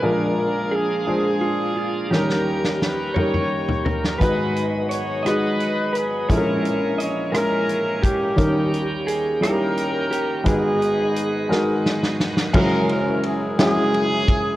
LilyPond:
<<
  \new Staff \with { instrumentName = "Electric slide guitar" } { \time 6/8 \key gis \minor \tempo 4. = 58 ais'4 gis'4 eis'8 eis'8 | g'4. cis''4 ais'8 | b'4 cis''8 dis''4 b'8 | cis''4 dis''8 ais'4 g'8~ |
g'4 gis'8 ais'4 g'8 | gis'2 r4 | r2. | }
  \new Staff \with { instrumentName = "Horn section" } { \time 6/8 \key gis \minor << { ais'4 gis'2 | ais'4 b'8 cis''4 ais'8 | b'8 r8 cis''8 b'4 gis'8 | ais'4 cis''8 ais'4 g'8~ |
g'4 r8 ais'4. | gis'2 r4 | ais'8 ais'8 gis'8 gis'4. | } \\ { <d' eis'>4 <d' eis'>2 | <cis' g'>4. <g' ais'>4. | <dis' fis'>4. <dis' fis'>4. | <cis' e'>4. <cis' e'>4 <ais cis'>8~ |
<ais cis'>4 r8 <cis' g'>4. | <b dis'>2 r4 | <cis' e'>4. <cis' e'>4. | } >> }
  \new Staff \with { instrumentName = "Upright piano" } { \time 6/8 \key gis \minor <gis d' eis' ais'>4. <gis d' eis' bis'>4. | <g cis' dis' ais'>4. <g cis' dis' ais'>4. | <gis dis' fis' b'>4. <gis dis' fis' gis'>4. | <gis cis' e' a' ais'>4. <gis cis' e' ais'>4. |
<g cis' dis' ais'>4. <g cis' dis' e' g'>4. | <gis dis' fis' b'>4. <gis dis' fis' ais'>4. | <gis cis' e' fis' ais'>4. <gis cis' e' fis' gis'>4. | }
  \new Staff \with { instrumentName = "Upright piano" } { \clef bass \time 6/8 \key gis \minor <ais,, ais,>2. | <dis, dis>2. | <gis,, gis,>2. | <ais,, ais,>2. |
<dis, dis>2. | <gis,, gis,>2. | <fis,, fis,>2. | }
  \new Staff \with { instrumentName = "Tonewheel organ" } { \time 6/8 \key gis \minor << { gis'2. | g'2. | gis2.~ | gis2. |
g''2. | fis'2. | r2. | } \\ { d'2. | cis'2. | dis'2. | cis'2.~ |
cis'2. | b2. | r2. | } >> }
  \new Staff \with { instrumentName = "Tonewheel organ" } { \clef bass \time 6/8 \key gis \minor << { ais2.~ | ais2. | b2. | ais2. |
ais2. | gis2. | r2. | } \\ { eis2. | dis2. | fis2. | e2. |
dis2.~ | dis2. | r2. | } >> }
  \new DrumStaff \with { instrumentName = "Drums" } \drummode { \time 6/8 r4. r4. | sn16 sn8 sn16 sn8 toml16 toml8 tomfh16 tomfh16 sn16 | <hh bd>8 hh8 hh8 <hh ss>8 hh8 hh8 | <hh bd>8 hh8 hh8 <hh ss>8 hh8 <hh bd>8 |
<hh bd>8 hh8 hh8 <hh ss>8 hh8 hh8 | <hh bd>8 hh8 hh8 sn8 sn16 sn16 sn16 sn16 | <cymc bd>8 cymr8 cymr8 <cymr sn>8 cymr8 <bd cymr>8 | }
>>